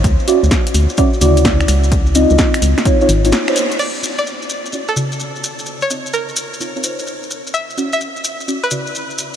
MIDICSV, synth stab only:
0, 0, Header, 1, 2, 480
1, 0, Start_track
1, 0, Tempo, 468750
1, 43, Time_signature, 4, 2, 24, 8
1, 9587, End_track
2, 0, Start_track
2, 0, Title_t, "Synth stab"
2, 0, Program_c, 0, 62
2, 282, Note_on_c, 0, 66, 72
2, 283, Note_on_c, 0, 64, 67
2, 283, Note_on_c, 0, 74, 87
2, 284, Note_on_c, 0, 61, 76
2, 396, Note_off_c, 0, 61, 0
2, 396, Note_off_c, 0, 64, 0
2, 396, Note_off_c, 0, 66, 0
2, 396, Note_off_c, 0, 74, 0
2, 1004, Note_on_c, 0, 66, 83
2, 1004, Note_on_c, 0, 74, 104
2, 1005, Note_on_c, 0, 61, 91
2, 1005, Note_on_c, 0, 64, 85
2, 1116, Note_off_c, 0, 74, 0
2, 1117, Note_off_c, 0, 61, 0
2, 1117, Note_off_c, 0, 64, 0
2, 1117, Note_off_c, 0, 66, 0
2, 1244, Note_on_c, 0, 49, 91
2, 1244, Note_on_c, 0, 64, 89
2, 1244, Note_on_c, 0, 66, 82
2, 1244, Note_on_c, 0, 74, 102
2, 1954, Note_off_c, 0, 49, 0
2, 1954, Note_off_c, 0, 64, 0
2, 1954, Note_off_c, 0, 66, 0
2, 1954, Note_off_c, 0, 74, 0
2, 2204, Note_on_c, 0, 63, 76
2, 2205, Note_on_c, 0, 60, 83
2, 2205, Note_on_c, 0, 65, 75
2, 2205, Note_on_c, 0, 75, 96
2, 2905, Note_off_c, 0, 60, 0
2, 2905, Note_off_c, 0, 63, 0
2, 2905, Note_off_c, 0, 65, 0
2, 2905, Note_off_c, 0, 75, 0
2, 2925, Note_on_c, 0, 60, 75
2, 2925, Note_on_c, 0, 63, 70
2, 2925, Note_on_c, 0, 73, 86
2, 2926, Note_on_c, 0, 65, 68
2, 3046, Note_off_c, 0, 60, 0
2, 3046, Note_off_c, 0, 63, 0
2, 3046, Note_off_c, 0, 65, 0
2, 3046, Note_off_c, 0, 73, 0
2, 3085, Note_on_c, 0, 65, 82
2, 3085, Note_on_c, 0, 73, 99
2, 3086, Note_on_c, 0, 60, 84
2, 3086, Note_on_c, 0, 63, 82
2, 3152, Note_off_c, 0, 60, 0
2, 3152, Note_off_c, 0, 63, 0
2, 3152, Note_off_c, 0, 65, 0
2, 3152, Note_off_c, 0, 73, 0
2, 3324, Note_on_c, 0, 60, 74
2, 3324, Note_on_c, 0, 63, 71
2, 3324, Note_on_c, 0, 65, 70
2, 3324, Note_on_c, 0, 73, 86
2, 3380, Note_off_c, 0, 60, 0
2, 3380, Note_off_c, 0, 63, 0
2, 3380, Note_off_c, 0, 65, 0
2, 3380, Note_off_c, 0, 73, 0
2, 3563, Note_on_c, 0, 65, 67
2, 3563, Note_on_c, 0, 72, 76
2, 3563, Note_on_c, 0, 73, 81
2, 3564, Note_on_c, 0, 63, 69
2, 3873, Note_off_c, 0, 72, 0
2, 3873, Note_off_c, 0, 73, 0
2, 3874, Note_off_c, 0, 63, 0
2, 3874, Note_off_c, 0, 65, 0
2, 4122, Note_on_c, 0, 64, 64
2, 4123, Note_on_c, 0, 61, 72
2, 4123, Note_on_c, 0, 74, 79
2, 4124, Note_on_c, 0, 66, 65
2, 4236, Note_off_c, 0, 61, 0
2, 4236, Note_off_c, 0, 64, 0
2, 4236, Note_off_c, 0, 66, 0
2, 4236, Note_off_c, 0, 74, 0
2, 4842, Note_on_c, 0, 64, 79
2, 4842, Note_on_c, 0, 74, 92
2, 4843, Note_on_c, 0, 61, 89
2, 4843, Note_on_c, 0, 66, 81
2, 4955, Note_off_c, 0, 64, 0
2, 4956, Note_off_c, 0, 61, 0
2, 4956, Note_off_c, 0, 66, 0
2, 4956, Note_off_c, 0, 74, 0
2, 5081, Note_on_c, 0, 49, 88
2, 5081, Note_on_c, 0, 64, 82
2, 5081, Note_on_c, 0, 66, 80
2, 5081, Note_on_c, 0, 74, 92
2, 5792, Note_off_c, 0, 49, 0
2, 5792, Note_off_c, 0, 66, 0
2, 5793, Note_off_c, 0, 64, 0
2, 5793, Note_off_c, 0, 74, 0
2, 6043, Note_on_c, 0, 75, 87
2, 6044, Note_on_c, 0, 60, 81
2, 6044, Note_on_c, 0, 63, 76
2, 6044, Note_on_c, 0, 65, 75
2, 6744, Note_off_c, 0, 60, 0
2, 6744, Note_off_c, 0, 63, 0
2, 6744, Note_off_c, 0, 65, 0
2, 6744, Note_off_c, 0, 75, 0
2, 6762, Note_on_c, 0, 60, 73
2, 6762, Note_on_c, 0, 65, 68
2, 6762, Note_on_c, 0, 73, 82
2, 6763, Note_on_c, 0, 63, 65
2, 6884, Note_off_c, 0, 60, 0
2, 6884, Note_off_c, 0, 65, 0
2, 6884, Note_off_c, 0, 73, 0
2, 6885, Note_off_c, 0, 63, 0
2, 6922, Note_on_c, 0, 65, 74
2, 6923, Note_on_c, 0, 60, 83
2, 6923, Note_on_c, 0, 63, 74
2, 6923, Note_on_c, 0, 73, 91
2, 6988, Note_off_c, 0, 63, 0
2, 6988, Note_off_c, 0, 65, 0
2, 6991, Note_off_c, 0, 60, 0
2, 6991, Note_off_c, 0, 73, 0
2, 7001, Note_on_c, 0, 63, 65
2, 7001, Note_on_c, 0, 65, 63
2, 7001, Note_on_c, 0, 72, 69
2, 7001, Note_on_c, 0, 73, 78
2, 7712, Note_off_c, 0, 63, 0
2, 7712, Note_off_c, 0, 65, 0
2, 7713, Note_off_c, 0, 72, 0
2, 7713, Note_off_c, 0, 73, 0
2, 7961, Note_on_c, 0, 61, 77
2, 7961, Note_on_c, 0, 64, 66
2, 7961, Note_on_c, 0, 66, 69
2, 7961, Note_on_c, 0, 74, 80
2, 8075, Note_off_c, 0, 61, 0
2, 8075, Note_off_c, 0, 64, 0
2, 8075, Note_off_c, 0, 66, 0
2, 8075, Note_off_c, 0, 74, 0
2, 8682, Note_on_c, 0, 61, 92
2, 8682, Note_on_c, 0, 64, 78
2, 8682, Note_on_c, 0, 66, 81
2, 8682, Note_on_c, 0, 74, 97
2, 8795, Note_off_c, 0, 61, 0
2, 8795, Note_off_c, 0, 64, 0
2, 8795, Note_off_c, 0, 66, 0
2, 8795, Note_off_c, 0, 74, 0
2, 8922, Note_on_c, 0, 49, 89
2, 8922, Note_on_c, 0, 64, 82
2, 8922, Note_on_c, 0, 66, 79
2, 8922, Note_on_c, 0, 74, 98
2, 9587, Note_off_c, 0, 49, 0
2, 9587, Note_off_c, 0, 64, 0
2, 9587, Note_off_c, 0, 66, 0
2, 9587, Note_off_c, 0, 74, 0
2, 9587, End_track
0, 0, End_of_file